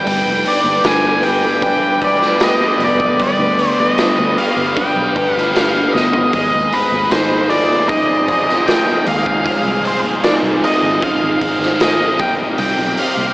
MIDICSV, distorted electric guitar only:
0, 0, Header, 1, 2, 480
1, 0, Start_track
1, 0, Tempo, 783290
1, 44, Time_signature, 4, 2, 24, 8
1, 8172, End_track
2, 0, Start_track
2, 0, Title_t, "Distorted electric guitar"
2, 0, Program_c, 0, 30
2, 0, Note_on_c, 0, 67, 74
2, 34, Note_on_c, 0, 55, 69
2, 276, Note_on_c, 0, 71, 64
2, 524, Note_on_c, 0, 62, 65
2, 763, Note_off_c, 0, 67, 0
2, 765, Note_on_c, 0, 67, 70
2, 999, Note_off_c, 0, 62, 0
2, 1007, Note_on_c, 0, 62, 70
2, 1236, Note_off_c, 0, 55, 0
2, 1243, Note_off_c, 0, 71, 0
2, 1250, Note_on_c, 0, 71, 69
2, 1483, Note_off_c, 0, 67, 0
2, 1491, Note_on_c, 0, 67, 73
2, 1727, Note_on_c, 0, 59, 73
2, 1967, Note_on_c, 0, 55, 76
2, 2193, Note_off_c, 0, 71, 0
2, 2201, Note_on_c, 0, 71, 69
2, 2202, Note_off_c, 0, 62, 0
2, 2444, Note_on_c, 0, 62, 71
2, 2677, Note_off_c, 0, 67, 0
2, 2685, Note_on_c, 0, 67, 71
2, 2915, Note_off_c, 0, 62, 0
2, 2922, Note_off_c, 0, 59, 0
2, 2923, Note_on_c, 0, 62, 69
2, 3154, Note_off_c, 0, 71, 0
2, 3161, Note_on_c, 0, 71, 76
2, 3162, Note_off_c, 0, 55, 0
2, 3391, Note_off_c, 0, 67, 0
2, 3398, Note_on_c, 0, 67, 68
2, 3645, Note_on_c, 0, 59, 67
2, 3876, Note_off_c, 0, 59, 0
2, 3878, Note_off_c, 0, 67, 0
2, 3879, Note_off_c, 0, 71, 0
2, 3879, Note_on_c, 0, 56, 70
2, 3880, Note_off_c, 0, 62, 0
2, 4124, Note_on_c, 0, 72, 66
2, 4361, Note_on_c, 0, 63, 61
2, 4594, Note_on_c, 0, 65, 70
2, 4835, Note_off_c, 0, 63, 0
2, 4837, Note_on_c, 0, 63, 75
2, 5069, Note_off_c, 0, 72, 0
2, 5071, Note_on_c, 0, 72, 70
2, 5078, Note_off_c, 0, 56, 0
2, 5303, Note_off_c, 0, 65, 0
2, 5311, Note_on_c, 0, 65, 70
2, 5554, Note_on_c, 0, 56, 75
2, 5791, Note_off_c, 0, 56, 0
2, 5798, Note_on_c, 0, 56, 73
2, 6023, Note_off_c, 0, 72, 0
2, 6026, Note_on_c, 0, 72, 71
2, 6269, Note_off_c, 0, 63, 0
2, 6271, Note_on_c, 0, 63, 65
2, 6510, Note_off_c, 0, 65, 0
2, 6518, Note_on_c, 0, 65, 72
2, 6758, Note_off_c, 0, 63, 0
2, 6760, Note_on_c, 0, 63, 72
2, 6994, Note_off_c, 0, 72, 0
2, 6997, Note_on_c, 0, 72, 74
2, 7000, Note_off_c, 0, 56, 0
2, 7225, Note_off_c, 0, 65, 0
2, 7233, Note_on_c, 0, 65, 70
2, 7475, Note_on_c, 0, 48, 71
2, 7477, Note_off_c, 0, 65, 0
2, 7717, Note_off_c, 0, 48, 0
2, 7724, Note_on_c, 0, 48, 75
2, 7963, Note_off_c, 0, 72, 0
2, 7965, Note_on_c, 0, 72, 68
2, 8172, Note_off_c, 0, 48, 0
2, 8172, Note_off_c, 0, 63, 0
2, 8172, Note_off_c, 0, 72, 0
2, 8172, End_track
0, 0, End_of_file